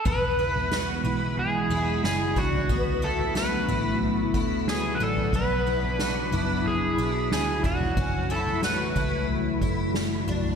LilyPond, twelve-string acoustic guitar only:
\new Staff \with { instrumentName = "Twelve-string acoustic guitar" } { \time 4/4 \key e \mixolydian \tempo 4 = 91 b8 e'8 fis'8 e'4 e'4 d'8 | b8 e'8 fis'8 e'4 e'4 d'8 | b8 e'8 fis'8 e'4 e'4 d'8 | cis'8 e'8 fis'8 e'4 e'4 d'8 | }